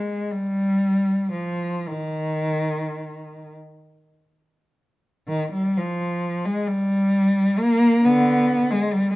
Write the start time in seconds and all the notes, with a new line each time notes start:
Already playing: G#3
0.31 G3
1.32 F3
1.87 D#3
5.28 D#3
5.52 G3
5.78 F3
6.46 G#3
6.67 G3
7.59 A#3
8.05 D3 B3
8.71 G#3
8.93 G3